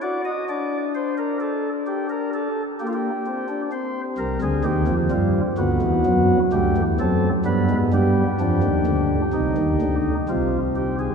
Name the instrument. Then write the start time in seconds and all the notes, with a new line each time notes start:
pipe organ
0.02 F#4 D5
0.25 D#5
0.49 D4 D5
0.95 C5
1.18 A#4
1.40 A4
1.87 G4
2.10 A#4
2.34 A4
2.80 A#3 G4
2.87 F4
2.94 G4
3.27 C4
3.49 D4
3.72 C4 C5
4.18 C2 C3 A#4
4.41 D2 D3 G#4
4.64 D#2 D#3 G4
4.88 F2 F3
5.11 G2 G3 F4
5.58 D2 D3 B3 F#4
5.81 E2 E3
6.06 F#2 F#3
6.53 D2 D3 A3 G4
6.77 E2 E3
6.99 F#2 F#3 C4 A4
7.45 G2 G3 B3 B4
7.70 G#2 G#3
7.93 G2 G3 G4
8.40 F2 F3 D4
8.63 D#2 D#3
8.87 D2 D3
9.33 C2 C3 D#4
9.57 D#2 D#3
9.82 D2 D3
10.29 C2 C3 C4 F4
10.76 G4
10.99 G#4